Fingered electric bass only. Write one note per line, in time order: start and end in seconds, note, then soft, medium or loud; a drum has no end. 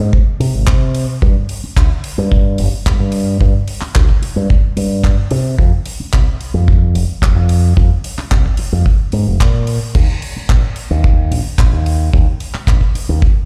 0.00 0.11 G#2 medium
0.40 0.52 C3 medium
0.54 0.65 G#1 medium
0.67 1.05 C3 medium
1.22 1.34 G2 loud
1.63 muted fingered electric bass stroke soft
1.76 1.88 D2 medium
2.18 2.60 G2 medium
2.59 2.70 G1 medium
2.72 muted fingered electric bass stroke soft
2.86 2.98 G1 medium
3.00 3.37 G2 medium
3.40 3.52 G2 loud
3.81 muted fingered electric bass stroke soft
3.95 4.07 D2 medium
4.22 muted fingered electric bass stroke soft
4.36 4.47 G2 medium
4.76 5.14 G2 medium
5.31 5.54 C3 loud
5.58 5.70 F2 loud
6.00 muted fingered electric bass stroke soft
6.13 6.25 C2 medium
6.54 6.96 F2 medium
6.94 7.06 F1 medium
7.09 muted fingered electric bass stroke soft
7.22 7.34 F1 medium
7.36 7.73 F2 loud
7.77 7.89 F2 loud
8.18 muted fingered electric bass stroke soft
8.31 8.43 C2 medium
8.59 muted fingered electric bass stroke soft
8.72 8.84 F2 medium
9.13 9.25 G#2 medium
9.27 9.38 F1 medium
9.40 9.78 A#2 medium
9.95 10.07 D#2 loud
10.36 muted fingered electric bass stroke soft
10.49 10.61 A#1 medium
10.91 11.33 D#2 medium
11.31 11.43 A#1 medium
11.45 muted fingered electric bass stroke soft
11.58 11.70 A#1 medium
11.72 12.10 D#2 loud
12.13 12.25 D#2 loud
12.54 muted fingered electric bass stroke soft
12.67 12.79 A#1 medium
12.95 muted fingered electric bass stroke soft
13.09 13.20 D#2 medium